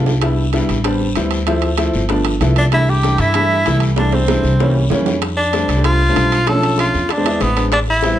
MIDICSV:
0, 0, Header, 1, 6, 480
1, 0, Start_track
1, 0, Key_signature, 0, "major"
1, 0, Tempo, 312663
1, 342, Time_signature, 4, 2, 24, 8
1, 12576, End_track
2, 0, Start_track
2, 0, Title_t, "Flute"
2, 0, Program_c, 0, 73
2, 3962, Note_on_c, 0, 74, 74
2, 4054, Note_off_c, 0, 74, 0
2, 4191, Note_on_c, 0, 76, 78
2, 4443, Note_on_c, 0, 79, 80
2, 4466, Note_off_c, 0, 76, 0
2, 4908, Note_on_c, 0, 76, 82
2, 4931, Note_off_c, 0, 79, 0
2, 5867, Note_off_c, 0, 76, 0
2, 6108, Note_on_c, 0, 74, 71
2, 6342, Note_on_c, 0, 72, 63
2, 6365, Note_off_c, 0, 74, 0
2, 7304, Note_off_c, 0, 72, 0
2, 12576, End_track
3, 0, Start_track
3, 0, Title_t, "Tenor saxophone"
3, 0, Program_c, 1, 66
3, 3964, Note_on_c, 1, 62, 85
3, 4068, Note_off_c, 1, 62, 0
3, 4208, Note_on_c, 1, 64, 94
3, 4451, Note_on_c, 1, 67, 98
3, 4474, Note_off_c, 1, 64, 0
3, 4916, Note_on_c, 1, 64, 100
3, 4939, Note_off_c, 1, 67, 0
3, 5871, Note_off_c, 1, 64, 0
3, 6117, Note_on_c, 1, 62, 80
3, 6357, Note_on_c, 1, 60, 71
3, 6380, Note_off_c, 1, 62, 0
3, 7312, Note_off_c, 1, 60, 0
3, 8247, Note_on_c, 1, 62, 88
3, 8925, Note_off_c, 1, 62, 0
3, 8983, Note_on_c, 1, 65, 95
3, 9950, Note_on_c, 1, 69, 99
3, 9973, Note_off_c, 1, 65, 0
3, 10427, Note_off_c, 1, 69, 0
3, 10442, Note_on_c, 1, 65, 93
3, 10931, Note_on_c, 1, 62, 84
3, 10954, Note_off_c, 1, 65, 0
3, 11391, Note_on_c, 1, 59, 91
3, 11415, Note_off_c, 1, 62, 0
3, 11747, Note_off_c, 1, 59, 0
3, 11864, Note_on_c, 1, 62, 93
3, 11972, Note_off_c, 1, 62, 0
3, 12129, Note_on_c, 1, 64, 89
3, 12576, Note_off_c, 1, 64, 0
3, 12576, End_track
4, 0, Start_track
4, 0, Title_t, "Grand piano"
4, 0, Program_c, 2, 0
4, 0, Note_on_c, 2, 57, 74
4, 0, Note_on_c, 2, 59, 72
4, 0, Note_on_c, 2, 62, 73
4, 0, Note_on_c, 2, 65, 87
4, 199, Note_off_c, 2, 59, 0
4, 199, Note_off_c, 2, 62, 0
4, 200, Note_off_c, 2, 57, 0
4, 201, Note_off_c, 2, 65, 0
4, 338, Note_on_c, 2, 59, 70
4, 339, Note_on_c, 2, 55, 72
4, 340, Note_on_c, 2, 64, 86
4, 344, Note_on_c, 2, 62, 74
4, 677, Note_off_c, 2, 55, 0
4, 677, Note_off_c, 2, 59, 0
4, 678, Note_off_c, 2, 64, 0
4, 679, Note_off_c, 2, 62, 0
4, 818, Note_on_c, 2, 55, 87
4, 819, Note_on_c, 2, 59, 73
4, 822, Note_on_c, 2, 62, 75
4, 828, Note_on_c, 2, 64, 88
4, 1157, Note_off_c, 2, 55, 0
4, 1158, Note_off_c, 2, 59, 0
4, 1159, Note_off_c, 2, 62, 0
4, 1162, Note_off_c, 2, 64, 0
4, 1298, Note_on_c, 2, 55, 84
4, 1302, Note_on_c, 2, 59, 71
4, 1304, Note_on_c, 2, 60, 73
4, 1305, Note_on_c, 2, 62, 97
4, 1637, Note_off_c, 2, 55, 0
4, 1639, Note_off_c, 2, 59, 0
4, 1640, Note_off_c, 2, 60, 0
4, 1641, Note_off_c, 2, 62, 0
4, 1784, Note_on_c, 2, 55, 78
4, 1784, Note_on_c, 2, 64, 81
4, 1789, Note_on_c, 2, 60, 70
4, 1791, Note_on_c, 2, 59, 64
4, 2120, Note_off_c, 2, 55, 0
4, 2120, Note_off_c, 2, 64, 0
4, 2123, Note_off_c, 2, 60, 0
4, 2124, Note_off_c, 2, 59, 0
4, 2254, Note_on_c, 2, 57, 84
4, 2258, Note_on_c, 2, 60, 88
4, 2262, Note_on_c, 2, 53, 92
4, 2264, Note_on_c, 2, 64, 101
4, 2596, Note_off_c, 2, 57, 0
4, 2597, Note_off_c, 2, 60, 0
4, 2599, Note_off_c, 2, 53, 0
4, 2600, Note_off_c, 2, 64, 0
4, 2732, Note_on_c, 2, 57, 81
4, 2735, Note_on_c, 2, 60, 83
4, 2735, Note_on_c, 2, 64, 98
4, 2736, Note_on_c, 2, 53, 91
4, 3075, Note_off_c, 2, 57, 0
4, 3076, Note_off_c, 2, 53, 0
4, 3076, Note_off_c, 2, 60, 0
4, 3076, Note_off_c, 2, 64, 0
4, 3218, Note_on_c, 2, 53, 84
4, 3220, Note_on_c, 2, 57, 77
4, 3224, Note_on_c, 2, 62, 101
4, 3225, Note_on_c, 2, 59, 75
4, 3558, Note_off_c, 2, 53, 0
4, 3559, Note_off_c, 2, 57, 0
4, 3561, Note_off_c, 2, 59, 0
4, 3561, Note_off_c, 2, 62, 0
4, 3705, Note_on_c, 2, 53, 82
4, 3708, Note_on_c, 2, 57, 77
4, 3709, Note_on_c, 2, 64, 86
4, 3713, Note_on_c, 2, 59, 77
4, 4041, Note_off_c, 2, 53, 0
4, 4043, Note_off_c, 2, 57, 0
4, 4043, Note_off_c, 2, 64, 0
4, 4046, Note_off_c, 2, 59, 0
4, 4191, Note_on_c, 2, 55, 62
4, 4193, Note_on_c, 2, 52, 72
4, 4194, Note_on_c, 2, 57, 66
4, 4198, Note_on_c, 2, 62, 72
4, 4525, Note_off_c, 2, 55, 0
4, 4526, Note_off_c, 2, 52, 0
4, 4526, Note_off_c, 2, 57, 0
4, 4528, Note_off_c, 2, 62, 0
4, 4662, Note_on_c, 2, 52, 75
4, 4666, Note_on_c, 2, 55, 62
4, 4667, Note_on_c, 2, 62, 82
4, 4668, Note_on_c, 2, 57, 60
4, 5000, Note_off_c, 2, 52, 0
4, 5002, Note_off_c, 2, 55, 0
4, 5003, Note_off_c, 2, 57, 0
4, 5003, Note_off_c, 2, 62, 0
4, 5142, Note_on_c, 2, 55, 66
4, 5146, Note_on_c, 2, 52, 74
4, 5147, Note_on_c, 2, 57, 65
4, 5150, Note_on_c, 2, 62, 81
4, 5480, Note_off_c, 2, 55, 0
4, 5482, Note_off_c, 2, 52, 0
4, 5483, Note_off_c, 2, 57, 0
4, 5484, Note_off_c, 2, 62, 0
4, 5630, Note_on_c, 2, 55, 74
4, 5633, Note_on_c, 2, 52, 78
4, 5633, Note_on_c, 2, 57, 77
4, 5635, Note_on_c, 2, 64, 90
4, 5964, Note_off_c, 2, 55, 0
4, 5966, Note_off_c, 2, 52, 0
4, 5966, Note_off_c, 2, 57, 0
4, 5967, Note_off_c, 2, 64, 0
4, 6095, Note_on_c, 2, 55, 71
4, 6098, Note_on_c, 2, 52, 72
4, 6105, Note_on_c, 2, 57, 69
4, 6105, Note_on_c, 2, 62, 84
4, 6437, Note_off_c, 2, 55, 0
4, 6438, Note_off_c, 2, 52, 0
4, 6442, Note_off_c, 2, 57, 0
4, 6442, Note_off_c, 2, 62, 0
4, 6578, Note_on_c, 2, 52, 73
4, 6581, Note_on_c, 2, 55, 67
4, 6585, Note_on_c, 2, 62, 80
4, 6590, Note_on_c, 2, 57, 64
4, 6919, Note_off_c, 2, 52, 0
4, 6920, Note_off_c, 2, 55, 0
4, 6922, Note_off_c, 2, 62, 0
4, 6924, Note_off_c, 2, 57, 0
4, 7066, Note_on_c, 2, 52, 82
4, 7069, Note_on_c, 2, 58, 70
4, 7072, Note_on_c, 2, 55, 77
4, 7073, Note_on_c, 2, 61, 89
4, 7402, Note_off_c, 2, 52, 0
4, 7404, Note_off_c, 2, 58, 0
4, 7405, Note_off_c, 2, 55, 0
4, 7406, Note_off_c, 2, 61, 0
4, 7538, Note_on_c, 2, 52, 84
4, 7540, Note_on_c, 2, 58, 75
4, 7541, Note_on_c, 2, 55, 76
4, 7544, Note_on_c, 2, 61, 95
4, 7878, Note_off_c, 2, 52, 0
4, 7879, Note_off_c, 2, 58, 0
4, 7880, Note_off_c, 2, 55, 0
4, 7881, Note_off_c, 2, 61, 0
4, 8497, Note_on_c, 2, 55, 71
4, 8497, Note_on_c, 2, 57, 68
4, 8498, Note_on_c, 2, 60, 67
4, 8499, Note_on_c, 2, 62, 83
4, 8753, Note_off_c, 2, 57, 0
4, 8754, Note_off_c, 2, 55, 0
4, 8754, Note_off_c, 2, 60, 0
4, 8754, Note_off_c, 2, 62, 0
4, 8855, Note_on_c, 2, 55, 69
4, 8857, Note_on_c, 2, 60, 65
4, 8859, Note_on_c, 2, 57, 61
4, 8864, Note_on_c, 2, 62, 77
4, 9196, Note_off_c, 2, 55, 0
4, 9197, Note_off_c, 2, 60, 0
4, 9198, Note_off_c, 2, 57, 0
4, 9201, Note_off_c, 2, 62, 0
4, 9345, Note_on_c, 2, 57, 73
4, 9348, Note_on_c, 2, 55, 75
4, 9350, Note_on_c, 2, 60, 67
4, 9350, Note_on_c, 2, 62, 86
4, 9765, Note_off_c, 2, 57, 0
4, 9766, Note_off_c, 2, 55, 0
4, 9767, Note_off_c, 2, 62, 0
4, 9768, Note_off_c, 2, 60, 0
4, 9942, Note_on_c, 2, 53, 86
4, 9942, Note_on_c, 2, 61, 73
4, 9943, Note_on_c, 2, 57, 69
4, 9946, Note_on_c, 2, 62, 87
4, 10027, Note_off_c, 2, 53, 0
4, 10028, Note_off_c, 2, 57, 0
4, 10028, Note_off_c, 2, 61, 0
4, 10029, Note_off_c, 2, 62, 0
4, 10057, Note_on_c, 2, 53, 81
4, 10058, Note_on_c, 2, 62, 88
4, 10060, Note_on_c, 2, 57, 67
4, 10063, Note_on_c, 2, 61, 72
4, 10733, Note_off_c, 2, 53, 0
4, 10733, Note_off_c, 2, 62, 0
4, 10734, Note_off_c, 2, 57, 0
4, 10735, Note_off_c, 2, 61, 0
4, 11012, Note_on_c, 2, 56, 80
4, 11020, Note_on_c, 2, 60, 66
4, 11022, Note_on_c, 2, 62, 80
4, 11023, Note_on_c, 2, 59, 70
4, 11102, Note_off_c, 2, 56, 0
4, 11106, Note_off_c, 2, 60, 0
4, 11107, Note_off_c, 2, 59, 0
4, 11107, Note_off_c, 2, 62, 0
4, 11138, Note_on_c, 2, 60, 72
4, 11139, Note_on_c, 2, 56, 80
4, 11141, Note_on_c, 2, 59, 66
4, 11143, Note_on_c, 2, 64, 83
4, 11477, Note_off_c, 2, 56, 0
4, 11477, Note_off_c, 2, 60, 0
4, 11478, Note_off_c, 2, 59, 0
4, 11479, Note_off_c, 2, 64, 0
4, 11613, Note_on_c, 2, 56, 70
4, 11619, Note_on_c, 2, 59, 65
4, 11620, Note_on_c, 2, 62, 77
4, 11621, Note_on_c, 2, 60, 57
4, 11858, Note_off_c, 2, 56, 0
4, 11861, Note_off_c, 2, 59, 0
4, 11861, Note_off_c, 2, 62, 0
4, 11862, Note_off_c, 2, 60, 0
4, 12332, Note_on_c, 2, 55, 83
4, 12339, Note_on_c, 2, 59, 65
4, 12339, Note_on_c, 2, 60, 76
4, 12344, Note_on_c, 2, 64, 84
4, 12576, Note_off_c, 2, 55, 0
4, 12576, Note_off_c, 2, 59, 0
4, 12576, Note_off_c, 2, 60, 0
4, 12576, Note_off_c, 2, 64, 0
4, 12576, End_track
5, 0, Start_track
5, 0, Title_t, "Upright bass"
5, 0, Program_c, 3, 32
5, 0, Note_on_c, 3, 36, 78
5, 970, Note_off_c, 3, 36, 0
5, 1061, Note_on_c, 3, 33, 82
5, 1733, Note_off_c, 3, 33, 0
5, 1770, Note_on_c, 3, 38, 83
5, 2892, Note_off_c, 3, 38, 0
5, 2976, Note_on_c, 3, 31, 86
5, 3650, Note_off_c, 3, 31, 0
5, 3687, Note_on_c, 3, 36, 84
5, 4812, Note_off_c, 3, 36, 0
5, 4892, Note_on_c, 3, 43, 87
5, 5568, Note_off_c, 3, 43, 0
5, 5618, Note_on_c, 3, 36, 84
5, 6737, Note_off_c, 3, 36, 0
5, 6805, Note_on_c, 3, 36, 84
5, 7484, Note_off_c, 3, 36, 0
5, 7517, Note_on_c, 3, 41, 88
5, 8646, Note_off_c, 3, 41, 0
5, 8722, Note_on_c, 3, 36, 89
5, 9402, Note_off_c, 3, 36, 0
5, 9450, Note_on_c, 3, 35, 80
5, 10571, Note_off_c, 3, 35, 0
5, 10660, Note_on_c, 3, 40, 88
5, 11331, Note_off_c, 3, 40, 0
5, 11378, Note_on_c, 3, 33, 83
5, 12494, Note_off_c, 3, 33, 0
5, 12576, End_track
6, 0, Start_track
6, 0, Title_t, "Drums"
6, 96, Note_on_c, 9, 66, 90
6, 115, Note_on_c, 9, 73, 67
6, 250, Note_off_c, 9, 66, 0
6, 268, Note_off_c, 9, 73, 0
6, 330, Note_on_c, 9, 65, 88
6, 344, Note_on_c, 9, 60, 61
6, 357, Note_on_c, 9, 74, 60
6, 484, Note_off_c, 9, 65, 0
6, 498, Note_off_c, 9, 60, 0
6, 510, Note_off_c, 9, 74, 0
6, 582, Note_on_c, 9, 60, 32
6, 736, Note_off_c, 9, 60, 0
6, 810, Note_on_c, 9, 65, 58
6, 824, Note_on_c, 9, 60, 58
6, 839, Note_on_c, 9, 73, 63
6, 964, Note_off_c, 9, 65, 0
6, 978, Note_off_c, 9, 60, 0
6, 993, Note_off_c, 9, 73, 0
6, 1059, Note_on_c, 9, 65, 61
6, 1067, Note_on_c, 9, 73, 63
6, 1070, Note_on_c, 9, 60, 30
6, 1212, Note_off_c, 9, 65, 0
6, 1220, Note_off_c, 9, 73, 0
6, 1224, Note_off_c, 9, 60, 0
6, 1295, Note_on_c, 9, 65, 81
6, 1303, Note_on_c, 9, 60, 62
6, 1307, Note_on_c, 9, 74, 71
6, 1448, Note_off_c, 9, 65, 0
6, 1456, Note_off_c, 9, 60, 0
6, 1460, Note_off_c, 9, 74, 0
6, 1552, Note_on_c, 9, 60, 35
6, 1705, Note_off_c, 9, 60, 0
6, 1773, Note_on_c, 9, 65, 70
6, 1787, Note_on_c, 9, 73, 64
6, 1788, Note_on_c, 9, 60, 33
6, 1788, Note_on_c, 9, 61, 85
6, 1926, Note_off_c, 9, 65, 0
6, 1940, Note_off_c, 9, 73, 0
6, 1941, Note_off_c, 9, 60, 0
6, 1941, Note_off_c, 9, 61, 0
6, 2006, Note_on_c, 9, 65, 69
6, 2027, Note_on_c, 9, 73, 66
6, 2159, Note_off_c, 9, 65, 0
6, 2181, Note_off_c, 9, 73, 0
6, 2252, Note_on_c, 9, 65, 83
6, 2269, Note_on_c, 9, 60, 58
6, 2274, Note_on_c, 9, 74, 63
6, 2406, Note_off_c, 9, 65, 0
6, 2423, Note_off_c, 9, 60, 0
6, 2427, Note_off_c, 9, 74, 0
6, 2485, Note_on_c, 9, 65, 70
6, 2509, Note_on_c, 9, 60, 31
6, 2638, Note_off_c, 9, 65, 0
6, 2662, Note_off_c, 9, 60, 0
6, 2725, Note_on_c, 9, 65, 84
6, 2734, Note_on_c, 9, 60, 57
6, 2743, Note_on_c, 9, 73, 60
6, 2879, Note_off_c, 9, 65, 0
6, 2887, Note_off_c, 9, 60, 0
6, 2897, Note_off_c, 9, 73, 0
6, 2972, Note_on_c, 9, 73, 63
6, 2982, Note_on_c, 9, 60, 31
6, 3125, Note_off_c, 9, 73, 0
6, 3135, Note_off_c, 9, 60, 0
6, 3206, Note_on_c, 9, 65, 68
6, 3219, Note_on_c, 9, 60, 67
6, 3222, Note_on_c, 9, 74, 68
6, 3359, Note_off_c, 9, 65, 0
6, 3373, Note_off_c, 9, 60, 0
6, 3376, Note_off_c, 9, 74, 0
6, 3448, Note_on_c, 9, 65, 83
6, 3467, Note_on_c, 9, 60, 31
6, 3602, Note_off_c, 9, 65, 0
6, 3621, Note_off_c, 9, 60, 0
6, 3697, Note_on_c, 9, 65, 68
6, 3697, Note_on_c, 9, 66, 68
6, 3704, Note_on_c, 9, 73, 65
6, 3717, Note_on_c, 9, 60, 34
6, 3717, Note_on_c, 9, 61, 82
6, 3851, Note_off_c, 9, 65, 0
6, 3851, Note_off_c, 9, 66, 0
6, 3857, Note_off_c, 9, 73, 0
6, 3871, Note_off_c, 9, 60, 0
6, 3871, Note_off_c, 9, 61, 0
6, 3931, Note_on_c, 9, 65, 67
6, 3939, Note_on_c, 9, 73, 66
6, 4085, Note_off_c, 9, 65, 0
6, 4093, Note_off_c, 9, 73, 0
6, 4175, Note_on_c, 9, 65, 83
6, 4185, Note_on_c, 9, 74, 65
6, 4189, Note_on_c, 9, 60, 63
6, 4328, Note_off_c, 9, 65, 0
6, 4339, Note_off_c, 9, 74, 0
6, 4343, Note_off_c, 9, 60, 0
6, 4426, Note_on_c, 9, 60, 33
6, 4579, Note_off_c, 9, 60, 0
6, 4657, Note_on_c, 9, 65, 63
6, 4667, Note_on_c, 9, 73, 63
6, 4674, Note_on_c, 9, 60, 58
6, 4811, Note_off_c, 9, 65, 0
6, 4821, Note_off_c, 9, 73, 0
6, 4827, Note_off_c, 9, 60, 0
6, 4887, Note_on_c, 9, 65, 65
6, 4901, Note_on_c, 9, 73, 66
6, 4915, Note_on_c, 9, 60, 32
6, 5041, Note_off_c, 9, 65, 0
6, 5054, Note_off_c, 9, 73, 0
6, 5068, Note_off_c, 9, 60, 0
6, 5127, Note_on_c, 9, 65, 91
6, 5141, Note_on_c, 9, 74, 63
6, 5144, Note_on_c, 9, 60, 60
6, 5280, Note_off_c, 9, 65, 0
6, 5294, Note_off_c, 9, 74, 0
6, 5298, Note_off_c, 9, 60, 0
6, 5398, Note_on_c, 9, 60, 31
6, 5552, Note_off_c, 9, 60, 0
6, 5616, Note_on_c, 9, 65, 65
6, 5623, Note_on_c, 9, 73, 64
6, 5635, Note_on_c, 9, 60, 35
6, 5635, Note_on_c, 9, 61, 77
6, 5770, Note_off_c, 9, 65, 0
6, 5776, Note_off_c, 9, 73, 0
6, 5788, Note_off_c, 9, 60, 0
6, 5788, Note_off_c, 9, 61, 0
6, 5838, Note_on_c, 9, 65, 67
6, 5864, Note_on_c, 9, 73, 62
6, 5991, Note_off_c, 9, 65, 0
6, 6017, Note_off_c, 9, 73, 0
6, 6084, Note_on_c, 9, 65, 80
6, 6106, Note_on_c, 9, 60, 62
6, 6106, Note_on_c, 9, 74, 67
6, 6238, Note_off_c, 9, 65, 0
6, 6259, Note_off_c, 9, 60, 0
6, 6259, Note_off_c, 9, 74, 0
6, 6332, Note_on_c, 9, 65, 70
6, 6341, Note_on_c, 9, 60, 33
6, 6486, Note_off_c, 9, 65, 0
6, 6495, Note_off_c, 9, 60, 0
6, 6574, Note_on_c, 9, 60, 57
6, 6574, Note_on_c, 9, 65, 79
6, 6589, Note_on_c, 9, 73, 59
6, 6727, Note_off_c, 9, 60, 0
6, 6728, Note_off_c, 9, 65, 0
6, 6743, Note_off_c, 9, 73, 0
6, 6808, Note_on_c, 9, 60, 34
6, 6824, Note_on_c, 9, 73, 68
6, 6962, Note_off_c, 9, 60, 0
6, 6977, Note_off_c, 9, 73, 0
6, 7055, Note_on_c, 9, 74, 61
6, 7065, Note_on_c, 9, 66, 69
6, 7069, Note_on_c, 9, 60, 63
6, 7209, Note_off_c, 9, 74, 0
6, 7218, Note_off_c, 9, 66, 0
6, 7222, Note_off_c, 9, 60, 0
6, 7298, Note_on_c, 9, 60, 33
6, 7452, Note_off_c, 9, 60, 0
6, 7522, Note_on_c, 9, 66, 80
6, 7545, Note_on_c, 9, 60, 31
6, 7545, Note_on_c, 9, 61, 83
6, 7545, Note_on_c, 9, 73, 62
6, 7676, Note_off_c, 9, 66, 0
6, 7699, Note_off_c, 9, 60, 0
6, 7699, Note_off_c, 9, 61, 0
6, 7699, Note_off_c, 9, 73, 0
6, 7770, Note_on_c, 9, 66, 86
6, 7780, Note_on_c, 9, 73, 59
6, 7923, Note_off_c, 9, 66, 0
6, 7933, Note_off_c, 9, 73, 0
6, 8011, Note_on_c, 9, 65, 93
6, 8015, Note_on_c, 9, 74, 73
6, 8021, Note_on_c, 9, 60, 56
6, 8164, Note_off_c, 9, 65, 0
6, 8168, Note_off_c, 9, 74, 0
6, 8175, Note_off_c, 9, 60, 0
6, 8251, Note_on_c, 9, 60, 34
6, 8405, Note_off_c, 9, 60, 0
6, 8492, Note_on_c, 9, 65, 60
6, 8499, Note_on_c, 9, 60, 58
6, 8501, Note_on_c, 9, 73, 60
6, 8645, Note_off_c, 9, 65, 0
6, 8653, Note_off_c, 9, 60, 0
6, 8654, Note_off_c, 9, 73, 0
6, 8734, Note_on_c, 9, 65, 64
6, 8744, Note_on_c, 9, 60, 33
6, 8745, Note_on_c, 9, 73, 65
6, 8888, Note_off_c, 9, 65, 0
6, 8898, Note_off_c, 9, 60, 0
6, 8899, Note_off_c, 9, 73, 0
6, 8970, Note_on_c, 9, 65, 84
6, 8980, Note_on_c, 9, 60, 62
6, 8985, Note_on_c, 9, 74, 65
6, 9124, Note_off_c, 9, 65, 0
6, 9134, Note_off_c, 9, 60, 0
6, 9138, Note_off_c, 9, 74, 0
6, 9230, Note_on_c, 9, 60, 35
6, 9383, Note_off_c, 9, 60, 0
6, 9458, Note_on_c, 9, 73, 66
6, 9460, Note_on_c, 9, 60, 35
6, 9460, Note_on_c, 9, 61, 86
6, 9460, Note_on_c, 9, 65, 74
6, 9612, Note_off_c, 9, 73, 0
6, 9613, Note_off_c, 9, 60, 0
6, 9613, Note_off_c, 9, 61, 0
6, 9614, Note_off_c, 9, 65, 0
6, 9700, Note_on_c, 9, 73, 70
6, 9705, Note_on_c, 9, 65, 66
6, 9853, Note_off_c, 9, 73, 0
6, 9859, Note_off_c, 9, 65, 0
6, 9930, Note_on_c, 9, 60, 63
6, 9937, Note_on_c, 9, 65, 82
6, 9938, Note_on_c, 9, 74, 65
6, 10084, Note_off_c, 9, 60, 0
6, 10091, Note_off_c, 9, 65, 0
6, 10091, Note_off_c, 9, 74, 0
6, 10167, Note_on_c, 9, 60, 30
6, 10185, Note_on_c, 9, 65, 69
6, 10321, Note_off_c, 9, 60, 0
6, 10338, Note_off_c, 9, 65, 0
6, 10405, Note_on_c, 9, 60, 59
6, 10426, Note_on_c, 9, 65, 76
6, 10426, Note_on_c, 9, 73, 60
6, 10558, Note_off_c, 9, 60, 0
6, 10579, Note_off_c, 9, 73, 0
6, 10580, Note_off_c, 9, 65, 0
6, 10654, Note_on_c, 9, 60, 34
6, 10658, Note_on_c, 9, 73, 66
6, 10807, Note_off_c, 9, 60, 0
6, 10812, Note_off_c, 9, 73, 0
6, 10885, Note_on_c, 9, 60, 68
6, 10894, Note_on_c, 9, 74, 67
6, 10907, Note_on_c, 9, 65, 74
6, 11039, Note_off_c, 9, 60, 0
6, 11047, Note_off_c, 9, 74, 0
6, 11061, Note_off_c, 9, 65, 0
6, 11134, Note_on_c, 9, 60, 36
6, 11142, Note_on_c, 9, 65, 83
6, 11287, Note_off_c, 9, 60, 0
6, 11296, Note_off_c, 9, 65, 0
6, 11366, Note_on_c, 9, 60, 31
6, 11366, Note_on_c, 9, 61, 79
6, 11373, Note_on_c, 9, 65, 66
6, 11376, Note_on_c, 9, 73, 71
6, 11520, Note_off_c, 9, 60, 0
6, 11520, Note_off_c, 9, 61, 0
6, 11527, Note_off_c, 9, 65, 0
6, 11529, Note_off_c, 9, 73, 0
6, 11613, Note_on_c, 9, 73, 69
6, 11617, Note_on_c, 9, 65, 76
6, 11767, Note_off_c, 9, 73, 0
6, 11771, Note_off_c, 9, 65, 0
6, 11848, Note_on_c, 9, 60, 66
6, 11855, Note_on_c, 9, 74, 69
6, 11858, Note_on_c, 9, 65, 85
6, 12002, Note_off_c, 9, 60, 0
6, 12009, Note_off_c, 9, 74, 0
6, 12012, Note_off_c, 9, 65, 0
6, 12096, Note_on_c, 9, 60, 33
6, 12249, Note_off_c, 9, 60, 0
6, 12320, Note_on_c, 9, 60, 60
6, 12335, Note_on_c, 9, 73, 67
6, 12337, Note_on_c, 9, 65, 64
6, 12473, Note_off_c, 9, 60, 0
6, 12488, Note_off_c, 9, 73, 0
6, 12491, Note_off_c, 9, 65, 0
6, 12576, End_track
0, 0, End_of_file